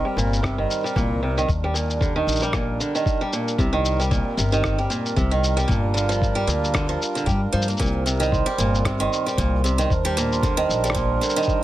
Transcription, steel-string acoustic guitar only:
0.05 0.15 G3 medium
0.17 0.42 A#2 medium
0.43 0.56 C3 medium
0.58 0.83 D#3 medium
0.84 0.94 G3 medium
0.96 1.21 A#2 medium
1.23 1.35 C3 medium
1.38 1.49 D#3 loud
1.64 1.74 G3 loud
1.74 1.99 A#2 medium
2.01 2.14 D3 medium
2.16 2.40 D#3 medium
2.42 2.52 G3 medium
2.54 2.79 A#2 medium
2.80 2.93 D3 medium
2.95 3.20 D#3 medium
3.21 3.31 G3 medium
3.33 3.58 A#2 medium
3.59 3.72 C3 medium
3.73 3.98 D#3 medium
4.00 4.10 G3 medium
4.11 4.36 A#2 medium
4.37 4.51 C3 medium
4.52 4.77 D#3 medium
4.78 4.89 G3 medium
4.90 5.15 A#2 medium
5.16 5.30 C3 medium
5.31 5.56 D#3 medium
5.57 5.68 G3 loud
5.68 5.94 A#2 medium
5.94 6.08 D3 medium
6.09 6.34 F3 loud
6.35 6.46 G3 medium
6.47 6.73 A#2 medium
6.74 6.87 D3 medium
6.89 6.99 F3 medium
7.15 7.26 D3 medium
7.26 7.40 G3 medium
7.53 7.66 F3 medium
7.68 7.78 A#3 medium
7.80 8.05 A#2 medium
8.06 8.19 C3 medium
8.20 8.45 D#3 medium
8.46 8.57 G3 loud
8.58 8.84 A#2 medium
8.85 8.98 C3 medium
9.00 9.25 D#3 medium
9.26 9.37 G3 medium
9.38 9.63 A#2 medium
9.64 9.77 C3 medium
9.78 9.90 D#3 loud
10.05 10.15 G3 loud
10.17 10.42 A#2 medium
10.43 10.56 D3 medium
10.57 10.82 D#3 loud
10.84 10.94 G3 medium
10.95 11.20 A#2 medium
11.21 11.35 D3 medium
11.36 11.61 D#3 loud

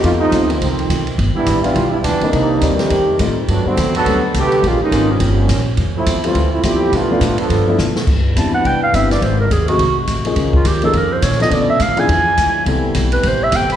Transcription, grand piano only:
0.00 0.30 F3 medium
0.00 0.30 A3 medium
0.00 0.31 B3 medium
0.00 0.31 C4 medium
0.00 0.31 D#4 medium
0.33 0.48 F3 medium
0.33 0.48 A3 medium
0.33 0.48 B3 soft
0.33 0.49 C4 medium
0.33 0.49 D#4 medium
1.64 1.75 E3 medium
1.64 1.75 G3 medium
1.64 1.75 B3 medium
1.64 1.75 D4 medium
1.64 1.76 E4 medium
2.22 2.60 G3 medium
2.22 2.60 A#3 medium
2.22 2.61 C4 medium
2.22 2.61 D4 medium
2.22 2.61 D#4 medium
2.62 2.91 G3 medium
2.62 2.91 A#3 medium
2.62 2.91 C4 medium
2.62 2.91 D4 soft
2.62 2.91 D#4 medium
3.19 3.35 G3 medium
3.19 3.35 A3 medium
3.19 3.35 C4 medium
3.19 3.36 D#4 medium
3.19 3.36 F4 medium
3.65 3.76 G3 medium
3.65 3.76 A3 medium
3.65 3.76 B3 medium
3.65 3.76 D4 medium
3.65 3.77 F#4 medium
4.07 4.22 G3 medium
4.07 4.22 A3 soft
4.07 4.22 B3 soft
4.07 4.22 D4 soft
4.07 4.23 F#4 medium
4.92 5.07 G#3 medium
4.92 5.08 A#3 medium
4.92 5.08 C4 medium
4.92 5.08 C#4 medium
4.92 5.08 F4 medium
6.25 6.34 G3 medium
6.25 6.34 A3 medium
6.25 6.35 C4 medium
6.25 6.35 E4 medium
6.25 6.35 F4 medium
6.63 6.92 G3 medium
6.63 6.93 A3 soft
6.63 6.93 C4 soft
6.63 6.93 E4 medium
6.63 6.93 F4 medium
7.10 7.20 F3 medium
7.10 7.20 A3 medium
7.10 7.21 B3 medium
7.10 7.21 D4 medium
7.10 7.21 F4 medium
7.67 7.77 F3 medium
7.67 7.78 A3 medium
7.67 7.78 B3 medium
7.67 7.78 D4 medium
7.67 7.78 E4 medium
8.36 8.79 G3 medium
8.36 8.79 B3 medium
8.36 8.79 C4 medium
8.36 8.79 D4 soft
8.36 8.79 E4 medium
8.93 9.09 G3 medium
8.93 9.09 B3 soft
8.93 9.09 C4 medium
8.93 9.10 D4 medium
8.93 9.10 E4 medium
9.68 9.78 F#3 medium
9.68 9.79 A3 medium
9.68 9.79 C4 soft
9.68 9.79 D#4 medium
9.68 9.79 G#4 medium
10.25 10.63 F3 medium
10.25 10.63 A#3 medium
10.25 10.64 C#4 medium
10.25 10.64 D#4 medium
10.25 10.64 G#4 medium
10.83 10.93 F3 medium
10.83 10.93 A#3 medium
10.83 10.93 C#4 medium
10.83 10.94 D#4 medium
10.83 10.94 G#4 medium
11.40 11.78 F3 medium
11.40 11.78 B3 medium
11.40 11.78 C#4 medium
11.40 11.79 D4 soft
11.40 11.79 A4 medium
11.96 12.07 F3 medium
11.96 12.08 B3 medium
11.96 12.08 D4 medium
11.96 12.08 E4 medium
11.96 12.09 G#4 medium
12.66 13.46 G3 medium
12.66 13.46 B3 soft
12.66 13.46 C4 soft
12.66 13.47 E4 soft
12.66 13.47 A4 medium

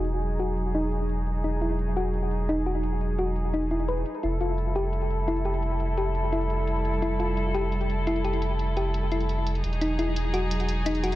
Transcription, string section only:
0.00 4.19 F#3 medium
0.00 4.19 D#4 medium
0.00 4.19 G#4 medium
4.23 9.60 G3 medium
4.23 9.60 E4 medium
4.23 9.60 A4 medium
9.64 11.15 F#3 medium
9.64 11.15 D#4 medium
9.64 11.15 G#4 medium

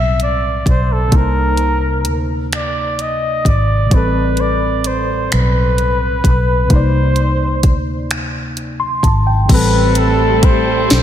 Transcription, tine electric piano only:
0.00 1.06 A2 medium
0.00 1.07 G3 soft
0.00 1.09 C4 soft
0.00 1.11 B4 medium
1.08 3.85 C3 soft
1.08 3.87 A#3 soft
1.14 3.88 D#4 soft
1.14 3.90 C5 medium
3.86 6.64 A2 medium
3.86 6.66 G3 soft
3.93 6.67 C4 soft
3.93 6.69 A4 medium
6.65 9.43 C3 soft
6.65 9.45 A#3 soft
6.72 9.46 D#4 soft
6.72 9.48 D5 medium
8.80 9.02 C6 medium
9.03 9.25 A5 medium
9.27 9.71 G5 medium
9.45 11.03 A2 medium
9.45 11.03 G3 medium
9.52 11.03 C4 medium
9.52 11.03 A4 medium

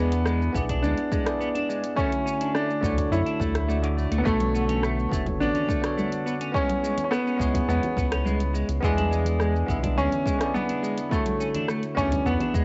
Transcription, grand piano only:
0.00 0.50 B3 loud
0.82 1.93 D4 medium
1.96 2.50 C#4 loud
2.55 3.14 D4 medium
3.12 3.94 E4 medium
4.18 4.25 B3 medium
4.25 5.07 A3 loud
5.40 6.51 D4 loud
6.54 7.03 C#4 loud
7.04 7.11 C#4 medium
7.11 7.67 B3 loud
7.69 8.50 B3 medium
8.84 10.01 G#3 medium
9.98 10.51 C#4 loud
10.54 11.13 B3 medium
11.11 11.65 A3 medium
11.97 12.27 C#4 loud
12.26 12.65 B3 medium

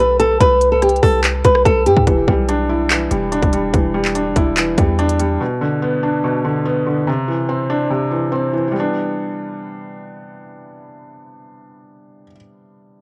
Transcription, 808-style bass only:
0.00 0.38 B1 loud
0.40 1.00 C2 loud
1.03 1.43 C2 loud
1.45 1.65 C2 loud
1.65 1.88 C2 loud
1.86 1.96 G2 loud
1.97 2.07 G2 loud
2.07 2.27 E1 loud
2.28 3.08 B1 loud
3.11 3.41 E1 loud
3.43 3.73 E1 loud
3.74 4.34 E1 loud
4.36 4.76 E1 loud
4.78 5.38 E2 loud

